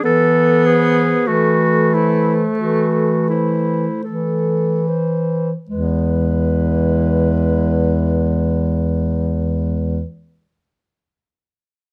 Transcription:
X:1
M:4/4
L:1/8
Q:1/4=38
K:E
V:1 name="Clarinet"
A =c A c A c A c | B8 |]
V:2 name="Clarinet"
A G F E F E A z | G,8 |]
V:3 name="Alto saxophone"
B,2 A,4- A, z | E,8 |]
V:4 name="Bass clarinet" clef=bass
E,2 E,2 E,2 E,2 | E,,8 |]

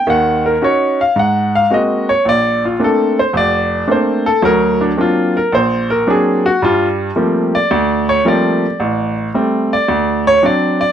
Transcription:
X:1
M:4/4
L:1/16
Q:"Swing" 1/4=110
K:Gm
V:1 name="Grand piano"
_g2 B2 _d2 f2 g2 f2 e2 ^c2 | d2 F2 A2 c2 d4 c2 A2 | ^A2 D2 F2 A2 c2 A2 _A2 ^F2 | F2 z4 d4 ^c2 d4- |
d2 z4 d4 ^c2 d3 z |]
V:2 name="Grand piano"
[E,,E,]4 [_DE_G]2 z2 _A,,4 [_A,B,CG]2 z2 | B,,,4 [A,B,CD]2 z2 F,,,4 [A,B,CD]2 z2 | [D,,^F,]4 [F,^A,CD]2 z2 ^A,,,4 [F,A,CD]2 z2 | [G,,G,]4 [F,G,A,B,C]2 z2 D,,4 [F,G,A,B,C]2 z2 |
A,,,4 [G,A,C]2 z2 D,,4 [^F,CD]2 d2 |]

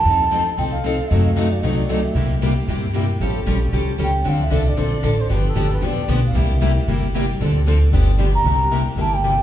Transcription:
X:1
M:4/4
L:1/8
Q:"Swing" 1/4=229
K:Cmix
V:1 name="Bansuri"
a3 z g f3 | ^d f2 =d ^d =d2 e- | e z6 z | z6 g2 |
f e2 d4 c | =B A2 B d2 z f | e4 z4 | z6 z b- |
b3 z a g3 |]
V:2 name="Steel-string acoustic guitar"
[F,C_EA] z [F,CEA] z [F,CEA] z [F,CEA] z | [^F,C^DA] z [F,CDA] z [F,CDA] z [F,CDA] z | [C,G,B,EG] z [C,G,B,EG] z [C,G,B,EG] z [C,G,B,EG] z | [^E,G,^CGA] z [E,G,CGA] z [E,G,CGA] z [E,G,CGA] z |
[D,F,CDA] z [D,F,CDA] z [D,F,CDA] z [D,F,CDA] z | [D,F,=B,DG] z [D,F,B,DG] z [D,F,B,DG] z [D,F,B,DG] z | [C,G,B,EG] z [C,G,B,EG] z [C,G,B,EG] z [C,G,B,EG] z | [D,F,CDA] z [D,F,CDA] z [D,F,=B,DG] z [D,F,B,DG] z |
z8 |]
V:3 name="Steel-string acoustic guitar"
[F,C_EA] z [F,CEA] z [F,CEA] z [F,CEA] z | [C,^F,A,^D^F] z [C,F,A,DF] z [C,F,A,DF] z [C,F,A,DF] z | [C,G,B,EG] z [C,G,B,EG] z [C,G,B,EG] z [C,G,B,EG] z | [^E,G,^CGA] z [E,G,CGA] z [E,G,CGA] z [E,G,CGA] z |
[D,F,CDA] z [D,F,CDA] z [D,F,CDA] z [D,F,CDA] z | [D,F,=B,DG] z [D,F,B,DG] z [D,F,B,DG] z [D,F,B,DG] z | [C,G,B,EG] z [C,G,B,EG] z [C,G,B,EG] z [C,G,B,EG] z | [D,F,CDA] z [D,F,CDA] z [D,F,=B,DG] z [D,F,B,DG] z |
[C,G,B,EG] z [C,G,B,EG] z [C,G,B,EG] z [C,G,B,EG] z |]
V:4 name="Upright bass" clef=bass
F,,4 C,,4 | ^F,,4 C,,4 | C,,4 G,,4 | A,,,2 B,,,2 ^B,,,2 ^C,,2 |
D,,2 C,,2 B,,,2 A,,,2 | G,,,2 G,,,2 A,,,2 =B,,,2 | C,,4 G,,,4 | D,,4 G,,,4 |
C,,4 G,,,4 |]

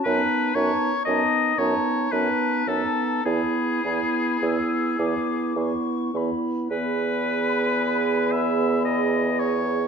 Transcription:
X:1
M:3/4
L:1/8
Q:1/4=55
K:Emix
V:1 name="Flute"
a a a a a a | b b e' d' c' b | [K:E] b6 |]
V:2 name="Oboe"
B c ^d c B A | G4 z2 | [K:E] B3 e d c |]
V:3 name="Clarinet"
^D D D D D D | E E E E E E | [K:E] G6 |]
V:4 name="French horn"
B, B, B, B, B, B, | B, B, B, B, B, B, | [K:E] B,6 |]
V:5 name="Bassoon" clef=bass
F,, F,, F,, F,, F,, F,, | E,, E,, E,, E,, E,, E,, | [K:E] E,,6 |]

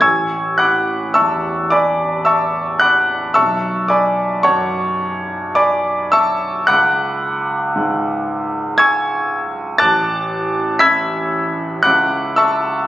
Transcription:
X:1
M:3/4
L:1/8
Q:1/4=56
K:A
V:1 name="Grand piano"
[gc'e'g'] [fbd'f'] [eac'e'] [dgbd'] [eac'e'] [fbd'f'] | [eac'e'] [dgbd'] [cfac']2 [dgbd'] [eac'e'] | [fbd'f']4 [gc'e'g']2 | [ad'f'a']2 [be'g'b']2 [fbd'f'] [eac'e'] |]
V:2 name="Grand piano" clef=bass
A,,,2 E,,4 | B,,,2 F,,4 | C,,2 G,,4 | A,,,2 [CE]2 [C,,CE]2 |]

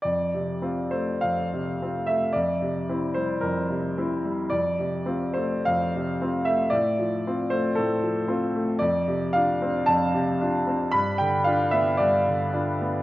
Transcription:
X:1
M:4/4
L:1/8
Q:1/4=112
K:F
V:1 name="Grand piano"
d3 c f3 e | d3 c B3 z | d3 c f3 e | d3 c A3 z |
[K:Ddor] d2 f2 a4 | b g f e d3 z |]
V:2 name="Grand piano"
F,, C, [CF] A, F,, C, [CF] A, | F,, C, [CE] G, F,, C, [CE] G, | F,, C, [CF] A, F,, C, [CF] A, | A,, F, [CF] A, A,, F, [CF] A, |
[K:Ddor] F,, C, [DF] C F,, C, [DF] C | G,, D, [DF] B, G,, D, [DF] B, |]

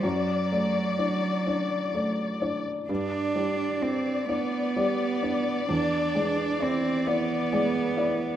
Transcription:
X:1
M:6/8
L:1/8
Q:3/8=43
K:G
V:1 name="Violin section"
d6 | d6- | d6 |]
V:2 name="Felt piano"
F,, [A,d] [Dd] [Dd] [A,d] [Dd] | G,, [G,d] [Dd] [Dd] [G,d] [Dd] | E,, [^G,d] [Ed] [Ed] [G,d] [Ed] |]
V:3 name="Cello"
F,4- F, z | D2 C B,3 | D2 C B,3 |]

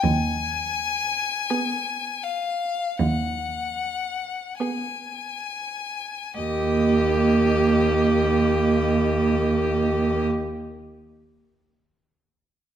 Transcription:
X:1
M:4/4
L:1/8
Q:1/4=38
K:Abdor
V:1 name="Violin"
a3 f g2 a2 | e8 |]
V:2 name="Violin"
z2 A2 z2 A2 | =G8 |]
V:3 name="Viola"
z2 C2 z2 C2 | B,8 |]
V:4 name="Cello" clef=bass
E,,2 z2 E,,2 z2 | E,,8 |]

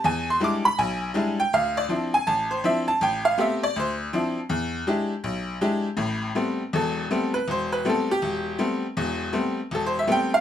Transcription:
X:1
M:4/4
L:1/8
Q:"Swing" 1/4=161
K:Am
V:1 name="Honky-tonk piano"
^g c' d' b g3 =g | f d z ^g a c e a | g f e d c z3 | z8 |
z4 A3 B | c B A G3 z2 | z4 (3A c e g f |]
V:2 name="Honky-tonk piano"
E,,2 [G,^G,DE] z B,,,2 [=G,^G,DE] z | D,,2 [F,CDE] z A,,,2 [F,CDE] z | A,,,2 [A,B,CG] z D,,2 [F,CDE] z | E,,2 [^G,DE=G] z B,,,2 [^G,DE=G] z |
[A,,,A,,]2 [G,A,B,C] z [E,,,E,,]2 [G,A,B,C] z | E,,,2 [G,A,B,C] z E,,,2 [G,A,B,C] z | [E,,,E,,]2 [G,A,B,C] z E,,,2 [G,A,B,C] z |]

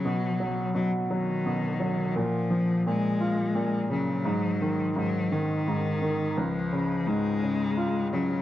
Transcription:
X:1
M:6/8
L:1/8
Q:3/8=57
K:Dbmix
V:1 name="Cello" clef=bass
G,2 G, E,3 | F,2 A,3 G,- | G,2 G, E,3 | F,2 A,3 G, |]
V:2 name="Upright piano" clef=bass
C, G, C, G, C, G, | B,, F, B,, F B,, D, | A,, E, A,, E, A,, E, | D,, D, A,, D, F D, |]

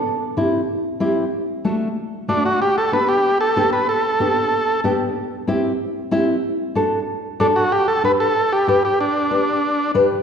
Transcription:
X:1
M:4/4
L:1/8
Q:1/4=188
K:G
V:1 name="Transistor combo organ"
z8 | z6 D F | G A B G2 A2 B | A6 z2 |
z8 | z6 D F | G A B A2 G G G | D6 z2 |]
V:2 name="Nylon-string guitar"
z2 [CEG] z3 [CEG] z | z2 [A,DF] z3 [A,DF] z | z2 [B,DG] z3 [B,DG] z | z2 [B,DG] z3 [B,DG] z |
z2 [CEG] z3 [CEG] z | z2 [DFA] z3 [DFA] z | z2 [DGB] z3 [DGB] z | z2 [DGB] z3 [DGB] z |]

